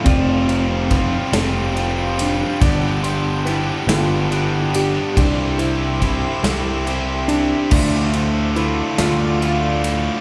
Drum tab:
CC |------|------|------|x-----|
RD |xxxxxx|xxxxxx|xxxxxx|-xxxxx|
SD |---o--|---o--|---o--|---o--|
BD |o-o---|o-----|o-o---|o-----|